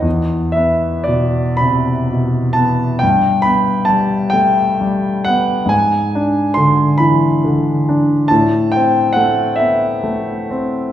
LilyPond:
<<
  \new Staff \with { instrumentName = "Grand piano" } { \time 6/8 \key e \minor \tempo 4. = 45 r8 e''8 d''8 b''4 a''8 | g''8 b''8 a''8 g''4 fis''8 | gis''4 c'''8 b''4. | a''8 g''8 fis''8 e''4 r8 | }
  \new Staff \with { instrumentName = "Grand piano" } { \clef bass \time 6/8 \key e \minor e,8 b8 b,8 c8 b,8 b8 | g,8 b8 g8 a8 g8 b8 | gis,8 d'8 d8 e8 d8 d'8 | a,8 c'8 a8 b8 a8 c'8 | }
>>